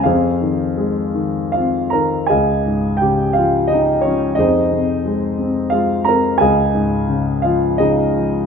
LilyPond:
<<
  \new Staff \with { instrumentName = "Grand piano" } { \time 3/4 \key des \lydian \tempo 4 = 86 <aes' c'' f''>2 <f' f''>8 <bes' bes''>8 | <aes' ees'' f'' aes''>4 <g' g''>8 <f' f''>8 <ees' ees''>8 <des' des''>8 | <ees' aes' c'' ees''>2 <f' f''>8 <bes' bes''>8 | <aes' ees'' f'' aes''>4 r8 <f' f''>8 <ees' aes' ees''>4 | }
  \new Staff \with { instrumentName = "Grand piano" } { \clef bass \time 3/4 \key des \lydian f,8 ees8 aes8 ees8 c'8 ees8 | des,8 aes,8 des8 f8 des8 f8 | f,8 c8 aes8 c'8 aes8 c'8 | des,8 aes,8 des8 f8 des8 f8 | }
>>